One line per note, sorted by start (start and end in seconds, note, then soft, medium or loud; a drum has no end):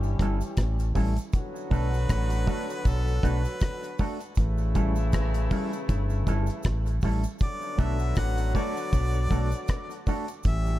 0.00 0.18 G1 loud
0.00 0.92 E3 medium
0.00 0.92 G3 medium
0.00 0.92 C#4 medium
0.00 0.92 G4 medium
0.00 cabasa medium
0.19 0.41 G1 medium
0.19 0.38 G3 medium
0.19 0.38 C#4 medium
0.19 0.38 E4 medium
0.19 0.38 A4 medium
0.19 kick loud
0.19 cross-stick medium
0.19 closed hi-hat medium
0.19 cabasa medium
0.41 closed hi-hat soft
0.41 cabasa medium
0.57 0.94 A1 medium
0.57 kick loud
0.57 cross-stick loud
0.57 closed hi-hat medium
0.57 cabasa medium
0.79 closed hi-hat soft
0.79 cabasa medium
0.95 1.17 A1 medium
0.95 1.13 G3 medium
0.95 1.13 C#4 medium
0.95 1.13 E4 medium
0.95 1.13 A4 medium
0.95 kick medium
0.95 open hi-hat medium
0.95 cabasa soft
1.17 closed hi-hat medium
1.17 cabasa medium
1.32 3.96 D3 medium
1.32 3.96 F#3 medium
1.32 3.96 B3 medium
1.32 3.96 F#4 medium
1.32 kick loud
1.32 closed hi-hat medium
1.32 cabasa medium
1.56 cabasa soft
1.71 2.07 B1 loud
1.71 1.88 A3 medium
1.71 1.89 D4 medium
1.71 1.89 F#4 medium
1.71 1.89 A4 medium
1.71 2.89 B4 loud
1.71 kick medium
1.71 open hi-hat soft
1.71 cabasa medium
1.94 cabasa medium
2.09 2.46 A1 medium
2.09 kick loud
2.09 cross-stick loud
2.09 closed hi-hat medium
2.09 cabasa medium
2.30 closed hi-hat medium
2.30 cabasa medium
2.47 2.64 A3 medium
2.47 2.65 D4 medium
2.47 2.65 F#4 medium
2.47 2.65 A4 medium
2.47 kick medium
2.47 open hi-hat medium
2.47 cabasa soft
2.70 muted clean electric guitar stroke soft
2.70 closed hi-hat soft
2.70 cabasa medium
2.85 3.21 B1 loud
2.85 3.27 A4 medium
2.85 kick loud
2.85 closed hi-hat medium
2.85 cabasa medium
3.08 cabasa soft
3.23 3.45 B1 medium
3.23 3.41 A3 medium
3.23 3.41 D4 medium
3.23 3.41 F#4 medium
3.23 3.42 A4 medium
3.23 4.00 B4 medium
3.23 kick medium
3.23 cross-stick medium
3.23 closed hi-hat medium
3.23 cabasa medium
3.45 closed hi-hat soft
3.45 cabasa medium
3.60 kick loud
3.60 cross-stick loud
3.60 closed hi-hat medium
3.60 cabasa medium
3.83 closed hi-hat soft
3.83 cabasa soft
3.98 4.17 A3 medium
3.98 4.17 D4 medium
3.98 4.17 F#4 medium
3.98 4.17 A4 medium
3.98 kick medium
3.98 open hi-hat medium
3.98 cabasa soft
4.20 closed hi-hat medium
4.20 cabasa medium
4.35 5.47 A1 loud
4.35 7.00 C#3 medium
4.35 7.00 E3 medium
4.35 7.00 A3 medium
4.35 7.00 E4 medium
4.35 kick loud
4.35 closed hi-hat medium
4.35 cabasa medium
4.58 cabasa soft
4.75 4.93 G3 medium
4.75 4.93 C#4 medium
4.75 4.93 E4 medium
4.75 4.93 A4 medium
4.75 kick medium
4.75 closed hi-hat medium
4.75 cabasa medium
4.96 cabasa medium
5.12 kick loud
5.12 cross-stick loud
5.12 closed hi-hat medium
5.12 cabasa medium
5.34 closed hi-hat medium
5.34 cabasa medium
5.51 5.68 G3 medium
5.51 5.69 C#4 medium
5.51 5.69 E4 medium
5.51 5.69 A4 medium
5.51 kick medium
5.51 open hi-hat medium
5.51 cabasa soft
5.73 muted clean electric guitar stroke soft
5.73 closed hi-hat soft
5.73 cabasa medium
5.89 6.25 G1 loud
5.89 kick loud
5.89 closed hi-hat medium
5.89 cabasa medium
6.10 cabasa soft
6.27 6.48 G1 medium
6.27 6.44 G3 medium
6.27 6.45 C#4 medium
6.27 6.45 E4 medium
6.27 6.45 A4 medium
6.27 kick medium
6.27 closed hi-hat medium
6.27 cabasa medium
6.47 closed hi-hat soft
6.47 cabasa medium
6.63 7.01 A1 medium
6.63 kick loud
6.63 cross-stick loud
6.63 closed hi-hat medium
6.63 cabasa medium
6.86 closed hi-hat soft
6.86 cabasa soft
7.01 7.24 A1 medium
7.01 7.21 G3 medium
7.01 7.21 C#4 medium
7.01 7.21 E4 medium
7.01 7.21 A4 medium
7.01 kick medium
7.01 open hi-hat medium
7.01 cabasa soft
7.24 closed hi-hat medium
7.24 cabasa medium
7.39 10.03 D3 medium
7.39 10.03 F#3 medium
7.39 10.03 B3 medium
7.39 10.03 F#4 medium
7.39 kick loud
7.39 closed hi-hat medium
7.39 cabasa medium
7.43 7.81 D5 medium
7.62 cabasa soft
7.78 8.15 B1 loud
7.78 7.96 A3 medium
7.78 7.96 D4 medium
7.78 7.96 F#4 medium
7.78 7.97 A4 loud
7.78 8.17 E5 medium
7.78 kick medium
7.78 closed hi-hat medium
7.78 cabasa medium
7.99 cabasa medium
8.15 8.53 A1 medium
8.15 8.53 F#5 loud
8.15 kick loud
8.15 cross-stick loud
8.15 closed hi-hat medium
8.15 cabasa medium
8.38 closed hi-hat medium
8.38 cabasa medium
8.55 8.72 A3 medium
8.55 8.73 D4 medium
8.55 8.73 F#4 medium
8.55 8.73 A4 medium
8.55 10.03 D5 medium
8.55 kick medium
8.55 open hi-hat medium
8.55 cabasa soft
8.77 muted clean electric guitar stroke soft
8.77 closed hi-hat soft
8.77 cabasa medium
8.93 9.29 B1 loud
8.93 kick loud
8.93 closed hi-hat medium
8.93 cabasa medium
9.14 cabasa soft
9.31 9.52 B1 medium
9.31 9.48 A3 medium
9.31 9.49 D4 medium
9.31 9.49 F#4 medium
9.31 9.49 A4 medium
9.31 kick medium
9.31 open hi-hat medium
9.31 cabasa medium
9.52 closed hi-hat soft
9.52 cabasa medium
9.68 kick loud
9.68 cross-stick loud
9.68 closed hi-hat medium
9.68 cabasa medium
9.90 closed hi-hat soft
9.90 cabasa soft
10.07 10.24 A3 medium
10.07 10.25 D4 medium
10.07 10.25 F#4 medium
10.07 10.25 A4 medium
10.07 kick medium
10.07 open hi-hat medium
10.07 cabasa soft
10.28 closed hi-hat medium
10.28 cabasa medium
10.43 10.79 A1 loud
10.43 10.79 E3 medium
10.43 10.79 G3 medium
10.43 10.79 C#4 medium
10.43 10.79 G4 medium
10.43 kick loud
10.43 closed hi-hat medium
10.43 cabasa medium
10.48 10.79 E5 medium
10.66 cabasa soft